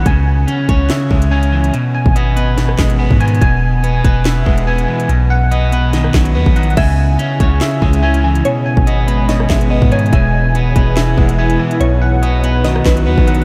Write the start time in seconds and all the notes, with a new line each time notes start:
0.06 C#2 C#3 G#5, kick, closed hi-hat
0.47 C#4, closed hi-hat
0.69 C#2 C#5, kick, closed hi-hat
0.90 C#3 E5, snare, clap, closed hi-hat
1.11 C#2 G#3 C#4, kick
1.22 closed hi-hat
1.31 C#4 G#5
1.43 closed hi-hat
1.53 E3
1.64 closed hi-hat
1.74 B2, closed hi-hat
1.95 G#5
2.06 G#1, kick
2.16 B3 D#5, closed hi-hat
2.36 B3 B4, closed hi-hat
2.57 B2, snare, closed hi-hat
2.69 cross-stick
2.78 G#1 G#3, kick, snare, clap
2.90 closed hi-hat
2.99 B3
3.11 G#2, kick
3.20 D#3 G#5, closed hi-hat, open hi-hat
3.28 closed hi-hat
3.35 closed hi-hat
3.41 E1 B2 G#5, kick, closed hi-hat
3.84 B3, closed hi-hat
4.05 E1 B4, kick, closed hi-hat
4.25 B2 E5, snare, clap, closed hi-hat
4.46 E1 G#3 B3, kick
4.58 closed hi-hat
4.67 B3 G#5
4.78 closed hi-hat
4.88 E3
5.00 closed hi-hat
5.09 B1 B2, closed hi-hat
5.30 F#5
5.51 B3 D#5, closed hi-hat
5.72 B3 B4, closed hi-hat
5.93 D#3, snare, closed hi-hat
6.04 cross-stick
6.14 B1 F#3, kick, snare, clap
6.25 closed hi-hat
6.35 D#2 B3
6.46 A#1, kick
6.56 D#3 F#5, closed hi-hat, open hi-hat
6.63 closed hi-hat
6.70 closed hi-hat
6.77 C#2 C#3 C#4 E4 G#4 E5 G#5, kick, closed hi-hat, crash
7.19 C#4, closed hi-hat
7.40 C#2 C#5, kick, closed hi-hat
7.61 C#3 E5, snare, clap, closed hi-hat
7.82 C#2 G#3 C#4, kick
7.93 closed hi-hat
8.03 C#4 G#5
8.14 closed hi-hat
8.24 E3 G#5
8.35 closed hi-hat
8.45 B2 G#3 B4 C#5 D#5, closed hi-hat
8.66 G#5
8.77 G#1, kick
8.87 B3 D#5, closed hi-hat
9.08 B3 B4, closed hi-hat
9.29 B2 D#5, snare, closed hi-hat
9.40 cross-stick
9.50 G#1 G#3 E5, kick, snare, clap
9.61 closed hi-hat
9.70 B3 D#5
9.82 G#2, kick
9.91 D#3 C#5 G#5, closed hi-hat, open hi-hat
9.99 closed hi-hat
10.06 closed hi-hat
10.13 E1 B2 E3 E4 B4 E5 G#5, kick, closed hi-hat
10.55 B3, closed hi-hat
10.76 E1 B4, kick, closed hi-hat
10.97 B2 E5, snare, clap, closed hi-hat
11.17 E1 G#3 B3, kick
11.29 closed hi-hat
11.38 B3 G#5
11.50 closed hi-hat
11.59 E3 G#5
11.71 closed hi-hat
11.80 B1 B2 D#4 F#4 C#5, closed hi-hat
12.02 F#5
12.23 B3 D#5, closed hi-hat
12.43 B3 B4, closed hi-hat
12.64 D#3 D#5, snare, closed hi-hat
12.76 cross-stick
12.85 B1 F#3 B4, kick, snare, clap
12.97 closed hi-hat
13.06 D#2 B3
13.18 A#1, kick
13.27 D#3 F#5, closed hi-hat, open hi-hat
13.35 closed hi-hat